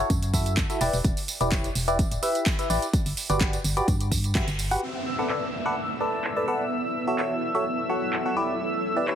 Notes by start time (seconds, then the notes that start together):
0.10 F#2, kick, closed hi-hat, tambourine
0.23 closed hi-hat, tambourine
0.34 E4 F#4 A4 E5, kick, open hi-hat, tambourine
0.46 closed hi-hat, tambourine
0.57 kick, clap, closed hi-hat, tambourine
0.70 E4 F#4 A4 E5, closed hi-hat, tambourine
0.81 E1 E4 G4 B4 D5, open hi-hat, tambourine
0.93 E1, open hi-hat, tambourine
1.04 E1, kick, closed hi-hat, tambourine
1.17 open hi-hat, tambourine
1.28 open hi-hat, tambourine
1.41 E1 E4 G4 B4 D5, closed hi-hat, tambourine
1.52 kick, clap, closed hi-hat, tambourine
1.64 closed hi-hat, tambourine
1.75 E1, open hi-hat, tambourine
1.88 E4 G4 B4 D5, closed hi-hat, tambourine
1.99 kick, closed hi-hat, tambourine
2.12 D1, closed hi-hat, tambourine
2.23 E4 G4 B4 E5, open hi-hat, tambourine
2.35 closed hi-hat, tambourine
2.46 kick, clap, closed hi-hat, tambourine
2.59 E4 G4 B4 E5, closed hi-hat, tambourine
2.70 A1 E4 G4 B4 D5, open hi-hat, tambourine
2.82 closed hi-hat, tambourine
2.93 kick, closed hi-hat, tambourine
3.06 G1, open hi-hat, tambourine
3.17 open hi-hat, tambourine
3.30 G1 F#4 G4 B4 D5, closed hi-hat, tambourine
3.41 G4, kick, clap, closed hi-hat, tambourine
3.53 closed hi-hat, tambourine
3.64 G1, open hi-hat, tambourine
3.77 F#4 G4 B4 D5, closed hi-hat, tambourine
3.88 G2, kick, closed hi-hat, tambourine
4.01 closed hi-hat, tambourine
4.12 kick, open hi-hat, tambourine
4.24 closed hi-hat, tambourine
4.35 F#4 G4 B4 E5, kick, clap, closed hi-hat, tambourine
4.48 G1, closed hi-hat, tambourine
4.59 open hi-hat, tambourine
4.71 F#4 G4 B4 F#5, open hi-hat, tambourine
4.82 B3 E5 E6, downlifter
4.94 E4
5.18 A4 B4 D5 F#5
5.30 A4 B4 D5 E5, clap
5.50 A4
5.66 A4 B4 D5 F#5
6.00 A4 B4 D5 A5
6.24 clap
6.36 A4 B4 D5 A5
6.48 A4 B4 D5 F#5
7.07 F#4 A4 C#5 E5
7.19 F#4 A4 C#5 E5, clap
7.55 F#4 A4 C#5 E5
7.89 F#4 A4 C#5 F#5
8.13 clap
8.26 F#4 A4 C#5 F#5
8.37 E4 G4 B4 D5
8.96 E4 G4 B4 D5
9.08 E4 G4 B4 C#5, clap